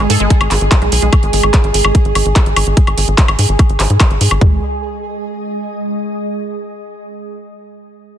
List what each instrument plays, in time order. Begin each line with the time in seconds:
Already playing: ambient pad G#3 G#4 D#5 D#6, synth texture G#4
0.10 analog synth bass G#2, synth arpeggio sound A4, open hi-hat
0.20 analog synth bass G#1, synth arpeggio sound G#3, closed hi-hat
0.30 synth arpeggio sound G#3, kick, closed hi-hat
0.41 analog synth bass G#1, closed hi-hat, high woodblock
0.51 analog synth bass G#1, clap, open hi-hat
0.61 analog synth bass G#1, closed hi-hat
0.72 kick, clap, closed hi-hat, high woodblock
0.82 analog synth bass B1, synth arpeggio sound G#3, ambient pad C#6, closed hi-hat
0.92 analog synth bass B1, open hi-hat
1.02 analog synth bass B1, synth arpeggio sound G#3, closed hi-hat
1.13 kick, closed hi-hat, high woodblock
1.23 analog synth bass G#1, closed hi-hat
1.33 analog synth bass G#1, open hi-hat
1.43 analog synth bass G#1, closed hi-hat, high woodblock
1.54 kick, clap, closed hi-hat
1.64 analog synth bass G#1, closed hi-hat
1.74 analog synth bass G#1, open hi-hat
1.85 analog synth bass G#1, high woodblock
1.95 kick, closed hi-hat
2.05 analog synth bass G#1, closed hi-hat
2.15 analog synth bass G#1, open hi-hat, high woodblock
2.26 analog synth bass G#1, closed hi-hat
2.36 kick, clap, closed hi-hat
2.46 analog synth bass G#1, closed hi-hat
2.56 analog synth bass G#1, open hi-hat, high woodblock
2.67 analog synth bass G#1, closed hi-hat
2.77 kick, closed hi-hat
2.87 analog synth bass G#1, closed hi-hat, high woodblock
2.98 analog synth bass G#1, open hi-hat
3.08 analog synth bass G#1, closed hi-hat
3.18 kick, clap, closed hi-hat
3.28 analog synth bass G#1, closed hi-hat, high woodblock
3.39 analog synth bass G#2, open hi-hat
3.49 analog synth bass G#1, closed hi-hat
3.59 kick, closed hi-hat, high woodblock
3.69 analog synth bass G#1, closed hi-hat
3.80 analog synth bass G#1, clap, open hi-hat
3.90 analog synth bass G#2, closed hi-hat
4.00 kick, clap, closed hi-hat, high woodblock
4.11 analog synth bass G#1, closed hi-hat
4.21 analog synth bass G#2, open hi-hat
4.31 analog synth bass G#1, closed hi-hat, high woodblock
4.41 analog synth bass G#1, synth arpeggio sound G#3, ambient pad G#3, kick, floor tom
4.48 ambient pad G#4
4.54 ambient pad D#5
4.60 ambient pad D#6